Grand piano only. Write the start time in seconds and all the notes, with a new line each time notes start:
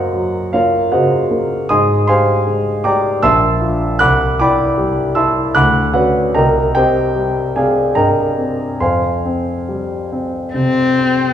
Already playing: F#2 A#3 F#4 A#4 C5 D#5 F#5 A#5
0.14 F#3
0.53 A#3 F4 A#4 C#5 F5
0.92 C#3 F#4 C5 D#5 F#5
1.31 A#3
1.69 G#2 D#5 G#5 C6 D#6
2.07 G4 C5 F5 G#5 C6
2.47 G#3
2.84 G4 D5 G5 A#5 D6
3.23 A#1 E5 A5 C6 E6
3.61 D4 F4
3.99 C2 F#5 B5 D6 F#6
4.40 E4 D5 G5 B5 D6
4.78 G3
5.15 E4 E5 A5 C6 E6
5.55 D2 F#5 B5 D6 F#6
5.94 C#4 F#4 B4 D5 F#5
6.35 C2 A#4 D#5 G5 A#5
6.75 C4 G4 C5 D#5 G5
7.16 G3
7.56 C4 G#4 D5 F5 G#5
7.95 G2 A#4 D#5 G5 A#5
8.38 C4
8.80 F2 C5 F5 G#5 C6
9.26 C4
9.69 G3
10.12 C4
10.54 C3
10.99 C4